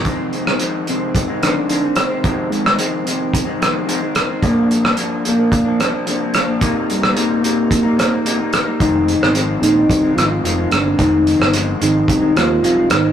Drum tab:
HH |x-x-x-x-x-x-x-x-|x-x-x-x-x-x-x-x-|x-x-x-x-x-x-x-x-|x-x-x-x-x-x-x-x-|
SD |---r------r---r-|---r------r---r-|---r------r---r-|---r------r---r-|
BD |o-------o-------|o-------o-------|o-------o-------|o-------o-------|

HH |x-x-x-x-x-x-x-x-|x-x-x-x-x-x-x-x-|
SD |---r------r---r-|---r------r---r-|
BD |o-------o-------|o-------o-------|